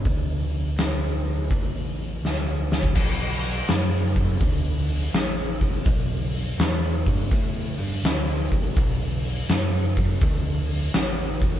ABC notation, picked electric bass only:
X:1
M:4/4
L:1/8
Q:"Swing" 1/4=83
K:Bm
V:1 name="Picked electric bass" clef=bass
D,,2 D,,2 A,,,2 D,,2 | B,,,2 F,,2 D,,2 A,,,2 | B,,,2 E,, G,, A,, G,, D,, A,,, | B,,,2 F,,2 D,,2 A,,,2 |]